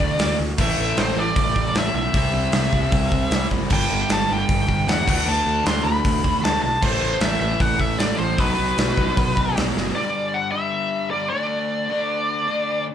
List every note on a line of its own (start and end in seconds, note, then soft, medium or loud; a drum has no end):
0.00 0.14 D2 medium
0.00 0.37 D3 medium
0.00 0.39 D3 medium
0.00 0.38 A3 loud
0.00 0.39 A3 medium
0.00 0.38 D4 medium
0.00 0.39 D4 loud
0.00 0.35 D5 medium
0.00 kick medium
0.19 0.33 D2 medium
0.19 snare loud
0.19 open hi-hat medium
0.39 0.53 D2 loud
0.58 0.72 A1 loud
0.58 1.15 A2 medium
0.58 1.18 E3 medium
0.58 1.15 A3 loud
0.58 1.00 E5 loud
0.58 kick loud
0.58 crash loud
0.79 0.92 A1 loud
0.97 1.11 A1 medium
0.97 1.19 C5 medium
0.97 snare loud
0.97 open hi-hat medium
1.16 1.30 A1 medium
1.16 1.75 E3 medium
1.16 1.74 A3 medium
1.16 1.78 D5 loud
1.20 1.73 A2 medium
1.36 1.50 A1 medium
1.36 kick loud
1.36 open hi-hat medium
1.56 1.70 A1 medium
1.56 kick medium
1.74 1.88 A1 loud
1.74 2.12 A2 medium
1.74 2.14 E3 medium
1.74 2.14 A3 medium
1.74 snare loud
1.74 open hi-hat medium
1.79 1.93 E5 medium
1.94 2.08 B1 medium
1.94 3.47 E5 loud
2.13 2.28 C2 loud
2.13 2.71 C3 medium
2.13 2.74 G3 medium
2.13 2.71 C4 medium
2.13 kick loud
2.13 open hi-hat medium
2.33 2.47 C2 medium
2.52 2.66 C2 medium
2.52 snare loud
2.52 open hi-hat medium
2.73 2.87 C2 medium
2.73 3.30 C3 medium
2.73 3.31 G3 medium
2.73 3.30 C4 medium
2.73 kick medium
2.92 3.06 C2 medium
2.92 kick loud
2.92 open hi-hat medium
3.12 3.26 C2 medium
3.12 kick medium
3.31 3.45 C2 loud
3.31 3.69 C3 medium
3.31 3.70 G3 medium
3.31 3.71 C4 medium
3.31 snare loud
3.31 open hi-hat medium
3.51 3.65 F#1 medium
3.51 kick medium
3.70 3.84 G1 loud
3.70 4.28 G2 medium
3.70 4.29 D3 medium
3.70 4.28 G3 loud
3.70 4.08 G5 loud
3.70 kick loud
3.70 crash loud
3.90 4.04 G1 medium
4.09 4.24 G1 medium
4.09 4.31 A5 loud
4.09 snare loud
4.09 open hi-hat medium
4.29 4.43 G1 medium
4.29 4.86 G2 medium
4.29 4.87 D3 medium
4.29 4.86 G3 medium
4.29 4.88 G5 loud
4.49 4.63 G1 medium
4.49 kick loud
4.49 open hi-hat medium
4.68 4.82 G1 medium
4.68 kick medium
4.87 5.01 E2 loud
4.87 5.06 G2 medium
4.87 5.05 D3 medium
4.87 5.07 G3 loud
4.87 5.08 F#5 loud
4.87 snare loud
4.87 open hi-hat medium
5.06 5.21 D2 medium
5.06 5.63 D3 medium
5.06 5.65 A3 loud
5.06 5.65 D4 loud
5.06 kick loud
5.06 crash loud
5.11 5.29 F#5 loud
5.26 5.40 D2 loud
5.26 5.67 A5 loud
5.46 5.60 D2 loud
5.64 5.79 D2 medium
5.64 6.22 D3 medium
5.64 6.23 A3 medium
5.64 6.22 D4 medium
5.64 5.84 C6 loud
5.64 snare loud
5.64 open hi-hat medium
5.84 5.98 D2 medium
5.84 6.39 B5 loud
6.05 6.19 D2 loud
6.05 kick loud
6.05 open hi-hat medium
6.23 6.39 D2 medium
6.23 6.63 D3 medium
6.23 6.63 A3 medium
6.23 6.62 D4 loud
6.23 kick medium
6.43 6.57 D2 medium
6.43 6.61 A5 loud
6.43 snare loud
6.43 open hi-hat medium
6.62 6.76 B1 medium
6.62 6.83 A5 loud
6.81 6.97 A1 loud
6.81 7.39 A2 medium
6.81 7.40 E3 medium
6.81 7.39 A3 loud
6.81 7.23 C5 loud
6.81 kick loud
6.81 crash loud
7.01 7.15 A1 loud
7.21 7.35 A1 medium
7.21 7.39 E5 medium
7.21 snare loud
7.21 open hi-hat medium
7.40 7.55 A1 loud
7.40 7.97 A2 medium
7.40 7.99 E3 medium
7.40 7.98 A3 medium
7.40 7.61 E5 medium
7.60 7.74 A1 loud
7.60 7.80 F#5 loud
7.60 kick loud
7.60 open hi-hat medium
7.79 7.94 A1 medium
7.79 8.00 E5 medium
7.79 kick medium
7.99 8.13 A1 medium
7.99 8.37 A2 medium
7.99 8.38 E3 medium
7.99 8.39 A3 medium
7.99 8.18 D5 medium
7.99 snare loud
7.99 open hi-hat medium
8.18 8.38 A1 medium
8.18 8.40 C5 loud
8.38 8.53 B1 loud
8.38 8.96 B2 loud
8.38 8.97 F#3 loud
8.38 8.95 B3 loud
8.38 9.57 B4 medium
8.38 kick loud
8.38 open hi-hat medium
8.59 8.73 B1 medium
8.78 8.92 B1 medium
8.78 snare loud
8.78 open hi-hat medium
8.96 9.11 B1 medium
8.96 9.54 B2 medium
8.96 9.55 F#3 medium
8.96 9.54 B3 medium
8.96 kick medium
9.17 9.31 B1 medium
9.17 kick loud
9.17 open hi-hat medium
9.37 9.51 B1 medium
9.37 kick medium
9.55 9.71 B1 medium
9.55 9.94 B2 medium
9.55 9.94 F#3 medium
9.55 9.95 B3 loud
9.55 snare loud
9.55 open hi-hat medium
9.76 9.90 F#1 medium
9.76 snare medium
9.95 10.52 G2 loud
9.95 10.53 D3 medium
9.95 10.51 G3 loud
9.95 10.36 D5 medium
10.34 10.52 F#5 medium
10.52 11.11 G2 medium
10.52 11.11 D3 medium
10.52 11.10 G3 medium
10.52 11.07 E5 medium
11.11 11.31 G2 medium
11.11 11.29 D3 medium
11.11 11.28 D5 medium
11.15 11.32 G3 medium
11.30 11.88 D3 loud
11.30 11.91 A3 loud
11.30 12.83 D5 loud
11.34 11.90 D4 loud
11.89 12.47 D3 medium
11.89 12.48 A3 medium
11.89 12.46 D4 loud
12.47 12.88 D3 medium
12.47 12.87 A3 medium
12.47 12.86 D4 medium